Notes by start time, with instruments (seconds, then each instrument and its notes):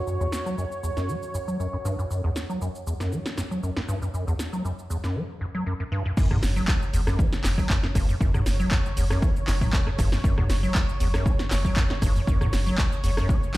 Already playing: ambient pad F#4 C#5 F#5, analog synth pad C#5
0.07 acid bass F#2, cabasa
0.21 acid bass E2, cabasa
0.32 snare, cabasa
0.46 acid bass F#3, cabasa
0.58 acid bass F#2, cabasa
0.72 cabasa
0.83 acid bass E2, cabasa
0.97 acid bass F#2, snare, cabasa
1.09 acid bass F#3, cabasa
1.23 cabasa
1.34 acid bass F#2, cabasa
1.48 acid bass F#3, cabasa
1.60 acid bass F#2, cabasa
1.73 acid bass F#2
1.85 acid bass G2, cabasa
1.99 acid bass F#2, cabasa
2.11 acid bass F#2, cabasa
2.24 acid bass E2
2.36 snare, cabasa
2.49 acid bass F#3, cabasa
2.61 acid bass F#2, cabasa
2.75 cabasa
2.87 acid bass E2, cabasa
3.00 acid bass F#2, snare, cabasa
3.12 acid bass F#3, cabasa
3.26 snare, cabasa
3.38 acid bass F#2, snare, cabasa
3.51 acid bass F#3, cabasa
3.63 acid bass F#2, cabasa
3.77 acid bass F#2, snare
3.88 acid bass G2, cabasa
4.02 acid bass F#2, cabasa
4.14 acid bass F#2, cabasa
4.27 acid bass E2, cabasa
4.39 snare, cabasa
4.53 acid bass F#3, cabasa
4.65 acid bass F#2, cabasa
4.79 cabasa
4.90 acid bass E2, cabasa
5.04 acid bass F#2, snare, cabasa
5.16 acid bass F#3
5.41 acid bass F#2
5.55 acid bass F#3
5.66 acid bass F#2
5.80 acid bass F#2
5.92 acid bass G2
6.05 acid bass F#2
6.17 acid bass F#2, analog synth pad C#5, kick, crash, cabasa
6.31 acid bass E2, cross-stick, mid tom
6.43 sub bass F#1, snare, open hi-hat, cabasa
6.56 acid bass F#3, cabasa
6.68 acid bass F#2, kick, cross-stick, clap, cabasa
6.82 cabasa
6.93 sub bass F#1, acid bass E2, open hi-hat, cabasa
7.07 acid bass F#2, cross-stick, snare, cabasa
7.19 acid bass F#3, kick, cabasa
7.33 snare, cabasa
7.44 sub bass F#1, acid bass F#2, snare, clap, open hi-hat, cabasa
7.58 acid bass F#3, kick, cross-stick, cabasa
7.70 acid bass F#2, kick, clap, cabasa
7.83 acid bass F#2, snare
7.95 sub bass F#1, acid bass G2, kick, cross-stick, open hi-hat, cabasa
8.09 acid bass F#2, cabasa
8.21 acid bass F#2, kick, cabasa
8.34 acid bass E2, cross-stick, mid tom, cabasa
8.46 sub bass F#1, snare, open hi-hat, cabasa
8.60 acid bass F#3, cabasa
8.71 acid bass F#2, kick, cross-stick, clap, cabasa
8.86 cabasa
8.97 sub bass F#1, acid bass E2, open hi-hat, cabasa
9.10 acid bass F#2, cross-stick, snare, cabasa
9.22 acid bass F#3, kick, cabasa
9.36 cabasa
9.47 sub bass F#1, acid bass F#2, snare, clap, open hi-hat, cabasa
9.61 acid bass F#3, kick, cross-stick, mid tom, open hi-hat, cabasa
9.73 acid bass F#2, kick, clap, cabasa
9.87 acid bass F#2, cross-stick
9.99 sub bass F#1, acid bass G2, kick, cross-stick, open hi-hat, cabasa
10.12 acid bass F#2, snare, cabasa
10.24 acid bass F#2, kick, cabasa
10.38 acid bass E2, cross-stick, mid tom
10.49 sub bass F#1, snare, open hi-hat, cabasa
10.63 acid bass F#3, cabasa
10.75 acid bass F#2, kick, cross-stick, clap, cabasa
10.89 cabasa
11.00 sub bass F#1, acid bass E2, open hi-hat, cabasa
11.14 acid bass F#2, cross-stick, snare, cabasa
11.26 acid bass F#3, kick, cabasa
11.39 snare, cabasa
11.51 sub bass F#1, acid bass F#2, snare, clap, open hi-hat, cabasa
11.65 acid bass F#3, kick, cross-stick, cabasa
11.76 acid bass F#2, kick, clap, cabasa
11.90 acid bass F#2, snare
12.02 sub bass F#1, acid bass G2, kick, cross-stick, open hi-hat, cabasa
12.16 acid bass F#2, cabasa
12.27 acid bass F#2, kick, cabasa
12.41 acid bass E2, cross-stick, mid tom, cabasa
12.53 sub bass F#1, snare, open hi-hat, cabasa
12.66 acid bass F#3, cabasa
12.78 acid bass F#2, kick, cross-stick, clap, cabasa
12.92 cabasa
13.04 sub bass F#1, acid bass E2, open hi-hat, cabasa
13.17 acid bass F#2, cross-stick, snare, cabasa
13.29 acid bass F#3, kick, cabasa
13.43 cabasa
13.54 clap